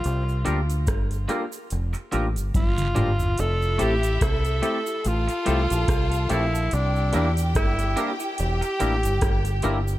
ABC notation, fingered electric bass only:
X:1
M:4/4
L:1/16
Q:"Swing 16ths" 1/4=72
K:F
V:1 name="Fingered electric bass" clef=bass
C,,2 D,,2 G,,,2 z2 F,,, z A,,, G,,, G,,,2 G,,,2 | F,,,2 A,,,2 C,,2 z2 A,,, z C,, B,,, C,,2 B,,,2 | C,,2 E,,2 G,,,2 z2 E,,, z A,,, G,,, G,,,2 G,,,2 |]